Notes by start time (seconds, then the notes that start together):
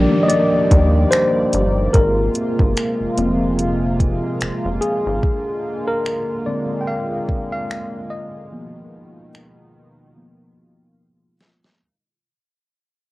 Already playing: D#3 F3 G3 A#3 D4 G4 A#4 D5 D#5, downlifter
0.23 D#5
0.28 D5, closed hi-hat
0.71 D#2, kick, closed hi-hat
1.11 C5, finger snap, closed hi-hat
1.53 G1, closed hi-hat
1.93 G#1 C3 G#3 F4 A#4, kick, closed hi-hat
2.35 closed hi-hat
2.59 G1, kick
2.77 finger snap, closed hi-hat
3.01 F1
3.18 F1 F3 A#3 C4, closed hi-hat
3.59 closed hi-hat
4.00 kick, closed hi-hat
4.41 F1, finger snap, closed hi-hat
4.65 F1
4.81 G#4, closed hi-hat
5.06 G#1
5.23 D3 G#3, kick
5.88 A#4
6.06 finger snap
6.46 D3 G#3 C4 D5
6.81 G5
6.87 F5
7.29 kick
7.52 F5
7.71 finger snap
8.10 D#5
8.51 B2 D#3 F3 A#3 B3
9.35 finger snap
10.17 F3 A#3 B3
11.41 snare
11.64 snare